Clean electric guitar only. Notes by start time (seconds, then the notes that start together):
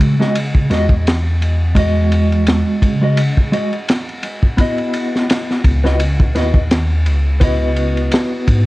Already playing: G#3 F#4 D#5
0.20 G#3 F#4 D#5
0.70 G#3 F#4 D#5
1.75 G#3 F#4 D#5
3.01 G#3 F#4 D#5
3.52 G#3 F#4 D#5
4.57 B3 E4 F#4 D#5
5.84 B3 E4 F#4 D#5
6.35 B3 E4 F#4 D#5
7.40 B3 E4 F#4 D#5